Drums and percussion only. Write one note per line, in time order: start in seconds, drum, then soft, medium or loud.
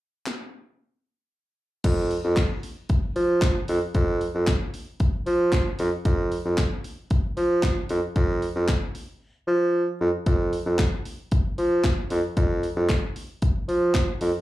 0.26 snare medium
0.26 clap loud
1.84 kick loud
1.84 closed hi-hat medium
1.84 crash medium
2.11 open hi-hat medium
2.37 kick loud
2.37 snare medium
2.37 clap loud
2.37 closed hi-hat medium
2.63 open hi-hat medium
2.89 kick loud
2.89 closed hi-hat medium
3.16 open hi-hat medium
3.42 kick loud
3.42 snare medium
3.42 clap loud
3.42 closed hi-hat medium
3.68 open hi-hat medium
3.94 kick loud
3.94 closed hi-hat medium
4.21 open hi-hat medium
4.47 kick loud
4.47 snare medium
4.47 clap loud
4.47 closed hi-hat medium
4.74 open hi-hat medium
5.00 kick loud
5.00 closed hi-hat medium
5.26 open hi-hat medium
5.52 kick loud
5.52 snare medium
5.52 clap loud
5.52 closed hi-hat medium
5.79 open hi-hat medium
6.05 kick loud
6.05 closed hi-hat medium
6.32 open hi-hat medium
6.58 kick loud
6.58 snare medium
6.58 clap loud
6.58 closed hi-hat medium
6.84 open hi-hat medium
7.10 kick loud
7.10 closed hi-hat medium
7.37 open hi-hat medium
7.63 kick loud
7.63 snare medium
7.63 clap loud
7.63 closed hi-hat medium
7.89 open hi-hat medium
8.16 kick loud
8.16 closed hi-hat medium
8.42 open hi-hat medium
8.68 kick loud
8.68 snare medium
8.68 clap loud
8.68 closed hi-hat medium
8.95 open hi-hat medium
10.26 kick loud
10.26 closed hi-hat medium
10.53 open hi-hat medium
10.79 kick loud
10.79 snare medium
10.79 clap loud
10.79 closed hi-hat medium
11.05 open hi-hat medium
11.31 kick loud
11.31 closed hi-hat medium
11.58 open hi-hat medium
11.84 kick loud
11.84 snare medium
11.84 clap loud
11.84 closed hi-hat medium
12.10 open hi-hat medium
12.37 kick loud
12.37 closed hi-hat medium
12.63 open hi-hat medium
12.89 kick loud
12.89 snare medium
12.89 clap loud
12.89 closed hi-hat medium
13.16 open hi-hat medium
13.42 kick loud
13.42 closed hi-hat medium
13.69 open hi-hat medium
13.95 kick loud
13.95 snare medium
13.95 clap loud
13.95 closed hi-hat medium
14.21 open hi-hat medium